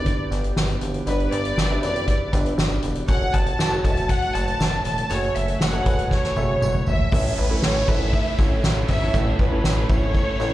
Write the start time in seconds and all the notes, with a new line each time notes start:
Already playing: F#1 G2 D3 B3 D4 G4 B4 D5
0.06 kick, closed hi-hat, tambourine
0.31 G1, snare, closed hi-hat, tambourine
0.44 closed hi-hat
0.56 G1, snare, tambourine
0.70 closed hi-hat
0.81 F#1, closed hi-hat, tambourine
0.94 closed hi-hat
1.06 G1 G2 D4 G4 B4 D5, closed hi-hat, tambourine
1.20 closed hi-hat
1.32 G1 D5, closed hi-hat
1.45 closed hi-hat
1.58 G1, snare, tambourine
1.70 D4 G4 B4 E5, closed hi-hat
1.82 F#1 D4 G4 B4 D5, closed hi-hat, tambourine
1.96 closed hi-hat
2.08 kick, closed hi-hat
2.32 G1 D4 G4 B4 D5, kick, snare, closed hi-hat, tambourine
2.46 closed hi-hat
2.58 G1, snare, tambourine
2.71 closed hi-hat
2.82 E1, closed hi-hat, tambourine
2.95 closed hi-hat
3.08 F#1 A2 A3 F#4 G#4 A4 C#5 F#5, kick, closed hi-hat, tambourine
3.34 F#1 A5, kick, closed hi-hat
3.46 closed hi-hat
3.59 F#1, snare, tambourine
3.71 F#4 G#4 A4 C#5
3.84 E1 F#4 A4 D#5 A5, kick, closed hi-hat, tambourine
3.91 E5
3.97 closed hi-hat
4.09 F#5, kick, closed hi-hat, tambourine
4.22 closed hi-hat
4.34 F#1 A5, closed hi-hat, tambourine
4.48 closed hi-hat
4.60 F#1, snare, tambourine
4.84 E1 A5, closed hi-hat, tambourine
4.98 closed hi-hat
5.10 F#1 F#4 G#4 A4 C#5 G#5, closed hi-hat, tambourine
5.24 closed hi-hat
5.35 F#1 E5, closed hi-hat
5.48 closed hi-hat
5.60 F#1 F#5, snare, tambourine
5.73 F#4 G#4 A4 C#5, closed hi-hat
5.86 E1 F#4 G#4 A4 B4, kick, closed hi-hat, tambourine
5.99 closed hi-hat
6.11 C#5, kick, snare
6.24 snare
6.36 F#1 F#4 G#4 A4 E5, high tom, tambourine
6.49 high tom
6.62 F#1, mid tom, tambourine
6.74 mid tom
6.87 G#1 E5, floor tom, tambourine
6.99 floor tom
7.12 A1 A2 C#3 A3 C#4 E4 A4 C#5, kick, crash, tambourine, downlifter
7.38 A1 B4, ride
7.50 A3 C#4 E4 A4 C#5, ride
7.62 A1 C#5, snare, ride, tambourine
7.75 ride
7.88 G#1 A3 C#4 E4 A4 B4 E5, kick, ride, tambourine
8.01 ride
8.13 kick, ride, tambourine
8.26 ride
8.38 A1 A3 C#4 E4 A4 C#5, kick, snare, ride, tambourine
8.51 ride
8.64 A1, snare, ride, tambourine
8.77 ride
8.88 G#1 E5, kick, open hi-hat, ride, tambourine
9.01 A3 C#4 E4 A4 C#5, ride
9.13 A1 A2 A3 C#4 E4 A4 C#5, kick, hi-hat pedal, ride, tambourine
9.27 ride
9.39 A1 B4, kick, ride, tambourine
9.51 A3 C#4 E4 A4 C#5, ride
9.64 A1, snare, ride, tambourine
9.77 ride
9.89 G#1 A3 C#4 E4 A4 C#5 E5, kick, ride, tambourine
10.02 ride
10.14 kick, ride, tambourine
10.28 ride
10.39 A1 A3 C#4 E4 A4 C#5, snare, ride, tambourine